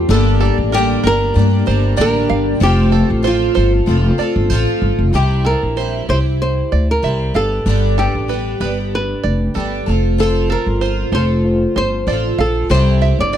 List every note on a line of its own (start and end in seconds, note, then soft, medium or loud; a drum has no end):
0.00 0.10 F4 medium
0.08 0.49 G1 loud
0.08 0.40 G2 medium
0.08 0.41 D3 medium
0.08 0.41 G3 medium
0.08 0.29 A#3 medium
0.08 0.41 A#3 medium
0.08 0.29 D4 medium
0.08 0.40 D4 medium
0.08 0.30 G4 medium
0.08 0.39 G4 medium
0.08 0.69 A4 loud
0.08 0.30 D5 medium
0.40 0.72 G3 soft
0.40 1.00 A#3 medium
0.40 0.73 A#3 soft
0.40 0.72 D4 soft
0.40 1.01 D4 medium
0.40 0.72 G4 soft
0.40 1.01 G4 medium
0.40 0.57 A4 medium
0.40 1.01 D5 medium
0.58 0.95 A1 medium
0.72 1.04 G2 medium
0.72 1.04 D3 medium
0.72 1.04 G3 medium
0.72 1.04 A#3 medium
0.72 1.04 D4 medium
0.72 1.05 G4 loud
0.72 1.03 G4 medium
0.72 1.02 A#4 medium
1.04 1.29 G1 medium
1.04 1.33 G3 soft
1.04 1.34 A#3 medium
1.04 1.34 D4 medium
1.04 1.35 G4 medium
1.04 1.20 A#4 medium
1.04 2.00 A#4 loud
1.34 1.61 G2 loud
1.34 1.66 G3 medium
1.34 1.41 A3 medium
1.34 1.66 A#3 medium
1.34 2.15 D4 medium
1.34 1.66 D4 medium
1.34 2.16 G4 medium
1.34 1.65 G4 medium
1.34 2.16 D5 medium
1.40 2.18 A#3 medium
1.66 1.93 G1 loud
1.66 1.96 G3 medium
1.66 1.96 A#3 medium
1.66 1.97 D4 medium
1.66 1.97 G4 medium
1.66 1.96 C5 medium
1.96 2.24 A1 loud
1.96 2.60 G2 medium
1.96 2.60 D3 medium
1.96 2.60 G3 medium
1.96 2.61 A#3 medium
1.96 2.61 D4 medium
1.96 2.61 G4 medium
1.96 2.14 D5 medium
2.01 2.58 A#4 medium
2.29 2.56 G1 medium
2.29 2.46 F5 medium
2.60 3.01 F1 loud
2.60 2.92 F3 medium
2.60 2.81 A3 medium
2.60 2.92 C4 medium
2.60 2.82 C4 medium
2.60 2.82 F4 medium
2.60 2.92 F4 loud
2.60 3.27 G4 medium
2.60 2.90 A4 loud
2.60 2.82 C5 medium
2.91 3.52 A3 medium
2.91 3.52 C4 medium
2.91 3.23 C4 soft
2.91 3.52 F4 medium
2.91 3.23 F4 soft
2.91 3.23 A4 soft
2.91 3.09 A4 medium
2.91 3.53 A4 medium
3.10 3.47 A1 medium
3.23 3.55 F3 medium
3.23 3.56 C4 medium
3.23 3.56 F4 medium
3.23 3.53 A4 medium
3.23 3.54 C5 medium
3.27 4.79 F4 medium
3.54 3.82 G1 medium
3.54 3.86 C4 soft
3.54 3.87 F4 medium
3.54 3.86 A4 medium
3.54 3.72 C5 medium
3.86 4.13 F1 loud
3.86 4.18 F3 medium
3.86 4.68 A3 medium
3.86 4.68 C4 medium
3.86 4.19 C4 medium
3.86 4.18 F4 medium
3.86 4.69 F4 medium
3.86 4.17 A4 medium
3.86 4.69 A4 medium
4.18 4.51 C4 medium
4.18 4.51 F4 medium
4.18 4.50 A4 medium
4.18 4.50 D5 medium
4.18 muted upright bass stroke soft
4.36 4.48 G1 medium
4.50 4.64 A1 medium
4.50 5.13 F3 medium
4.50 5.13 C4 medium
4.50 5.14 F4 loud
4.50 5.14 A4 medium
4.50 4.96 C5 medium
4.82 4.96 G1 medium
4.99 5.10 F1 medium
5.13 5.53 C2 loud
5.13 5.45 C3 medium
5.13 5.45 G3 medium
5.13 5.45 C4 medium
5.13 5.45 E4 medium
5.13 5.45 G4 medium
5.13 5.46 G4 medium
5.45 5.76 C4 soft
5.45 5.77 E4 soft
5.45 5.77 G4 soft
5.45 5.61 A4 medium
5.45 6.05 A#4 medium
5.63 6.00 A#1 medium
5.77 6.08 G3 soft
5.77 6.08 C4 soft
5.77 6.08 E4 medium
5.77 6.07 G4 medium
5.77 6.07 C5 medium
6.09 6.60 C2 medium
6.09 7.02 C4 soft
6.09 7.03 E4 medium
6.09 7.04 G4 medium
6.09 6.25 C5 medium
6.09 6.18 C5 medium
6.42 6.91 C5 medium
6.72 6.98 D2 medium
6.72 7.02 D5 medium
6.91 7.33 A#4 medium
7.02 7.29 C2 medium
7.02 7.34 G3 medium
7.02 7.34 C4 medium
7.02 7.34 E4 medium
7.02 7.33 G4 medium
7.02 7.20 E5 medium
7.34 7.60 G1 medium
7.34 7.65 G3 soft
7.34 7.66 B3 soft
7.34 7.66 D4 soft
7.34 7.66 G4 medium
7.34 7.94 A4 medium
7.34 7.51 F5 medium
7.66 8.06 G1 loud
7.66 7.97 G2 medium
7.66 7.98 D3 medium
7.66 7.98 G3 medium
7.66 7.98 B3 medium
7.66 7.97 D4 medium
7.66 7.96 G4 medium
7.97 8.27 G3 soft
7.97 8.28 B3 soft
7.97 8.29 D4 soft
7.97 8.29 G4 soft
7.97 8.89 G4 medium
7.97 8.14 A4 medium
8.15 8.52 A1 medium
8.28 8.60 G3 soft
8.28 8.60 B3 medium
8.28 8.60 D4 medium
8.28 8.59 G4 medium
8.28 8.59 B4 medium
8.60 9.12 G1 medium
8.60 9.53 G3 soft
8.60 9.55 B3 medium
8.60 9.56 D4 medium
8.60 9.55 G4 medium
8.60 8.77 B4 medium
8.95 9.84 B4 medium
9.24 9.50 F1 medium
9.24 9.54 D5 medium
9.54 9.82 G1 medium
9.54 9.86 G3 medium
9.54 9.87 B3 medium
9.54 9.88 D4 medium
9.54 9.86 G4 medium
9.54 10.01 A4 medium
9.86 10.53 F1 medium
9.86 10.18 C4 soft
9.86 10.18 F4 medium
9.86 10.18 A4 medium
10.18 10.50 F3 medium
10.18 10.99 C4 medium
10.18 10.51 C4 medium
10.18 11.00 F4 medium
10.18 10.50 F4 medium
10.18 10.51 A4 medium
10.18 10.52 A4 medium
10.18 11.00 C5 medium
10.50 10.81 C4 soft
10.50 10.81 F4 soft
10.50 10.66 A4 medium
10.50 11.10 A#4 medium
10.66 11.04 G1 medium
10.81 11.13 F3 soft
10.81 11.13 C4 medium
10.81 11.13 F4 medium
10.81 11.11 C5 medium
11.12 11.64 F1 medium
11.12 12.07 C4 soft
11.12 12.08 F4 medium
11.12 12.08 A4 medium
11.12 11.29 C5 medium
11.12 11.73 C5 medium
11.44 12.25 A3 medium
11.44 12.26 F4 medium
11.44 12.27 C5 medium
11.76 12.02 G1 medium
11.76 12.06 C5 medium
11.76 12.40 C5 medium
12.07 12.33 A1 medium
12.07 12.39 F3 medium
12.07 12.39 C4 medium
12.07 12.39 F4 medium
12.07 12.38 A4 medium
12.07 12.24 D5 medium
12.38 12.65 A#1 medium
12.38 12.69 C4 soft
12.38 12.71 F4 soft
12.38 12.71 A4 medium
12.38 12.55 F5 medium
12.69 13.11 C2 loud
12.69 13.02 C3 medium
12.69 13.37 G3 medium
12.69 13.02 G3 medium
12.69 13.02 C4 medium
12.69 13.37 E4 medium
12.69 13.01 E4 medium
12.69 13.00 G4 medium
12.69 13.37 C5 medium
12.69 13.20 C5 medium
13.01 13.33 C4 soft
13.01 13.33 E4 soft
13.01 13.34 G4 soft
13.01 13.19 E5 medium
13.19 13.37 G1 medium
13.19 13.37 D5 medium
13.33 13.37 G3 medium
13.33 13.37 C4 medium
13.33 13.37 D5 medium